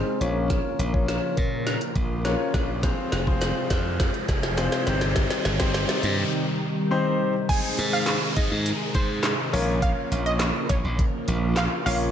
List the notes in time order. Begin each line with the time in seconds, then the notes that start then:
Already playing: C3 D#3 G#3 C4 D#4 G#4 C5, riser
0.21 A#1 C#3 F3 A#3 C#4 F4 A#4 C#5, closed hi-hat
0.50 kick, snare, closed hi-hat
0.79 A#1, closed hi-hat
0.93 C#4 F4 A#4 C#5, kick
1.08 snare, closed hi-hat
1.37 A#2, kick, closed hi-hat
1.67 snare, closed hi-hat
1.81 closed hi-hat
1.96 A#1, kick, closed hi-hat
2.25 C#4 F4 A#4 C#5, snare, closed hi-hat
2.54 A#1, kick, snare, closed hi-hat
2.83 C3 G#3 C4 F4 G#4 C5, kick, snare, closed hi-hat
3.12 F1, snare, closed hi-hat
3.27 C4 F4 G#4 C5, kick
3.42 snare, clap, closed hi-hat
3.70 F2, kick, snare, closed hi-hat
4.00 kick, snare, closed hi-hat
4.14 closed hi-hat
4.29 F1, kick, snare, closed hi-hat
4.43 snare
4.58 C4 F4 G#4 C5, snare, clap, closed hi-hat
4.72 snare
4.87 G1 D#3 G3 C4 D#4 G4 C5, snare, closed hi-hat
5.01 snare
5.16 kick, snare, closed hi-hat
5.30 snare
5.45 G1, snare, closed hi-hat
5.60 C4 D#4 G4 C5, kick, snare
5.74 snare, clap, closed hi-hat
5.89 snare
6.03 G2, closed hi-hat
6.91 C4 D#4 G4 C5
7.49 C3 D#3 G#3 C4 D#4 G#4 C5 G#5, kick, closed hi-hat, crash, downlifter
7.79 G#2, closed hi-hat
7.93 F5
8.06 snare, clap, closed hi-hat
8.36 G#2 D#5, kick, closed hi-hat
8.52 G#2
8.66 closed hi-hat
8.95 G#2 C5, kick, closed hi-hat
9.23 snare, clap, closed hi-hat
9.53 A#1 C#3 F3 A#3 C#4 F4 A#4 C#5, open hi-hat
9.82 F5, kick, closed hi-hat
10.12 A#1, closed hi-hat
10.26 D#5
10.40 snare, clap, closed hi-hat
10.69 A#1 C#5, kick, closed hi-hat
10.84 A#1
10.99 kick, closed hi-hat
11.28 A#1, closed hi-hat
11.56 F5, snare, clap, closed hi-hat
11.86 A#1 A#3 C#4 F4 A#4 C#5 F5, open hi-hat